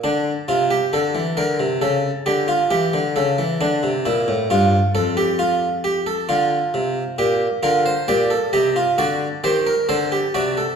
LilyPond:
<<
  \new Staff \with { instrumentName = "Harpsichord" } { \time 4/4 \key d \phrygian \tempo 4 = 67 << { r1 | r1 | r8 bes'16 c''16 d''8 ees''8 d''8 c''16 bes'16 c''8 d''8 | } \\ { d'8 f'16 g'16 a'8 bes'8 a'8 g'16 f'16 g'8 a'8 | d'8 e'8 f'8 a'16 g'16 f'8 g'16 a'16 f'4 | g'8 f'8 g'16 a'16 g'16 f'16 fis'8 g'8 a'16 g'16 fis'16 a'16 | } >> }
  \new Staff \with { instrumentName = "Harpsichord" } { \clef bass \time 4/4 \key d \phrygian d8 c8 d16 e16 d16 c16 cis8 d8 e16 d16 cis16 e16 | d16 c16 bes,16 a,16 g,8 f,4. d8 c8 | bes,8 d8 bes,8 c8 d8 ees8 d8 c8 | }
>>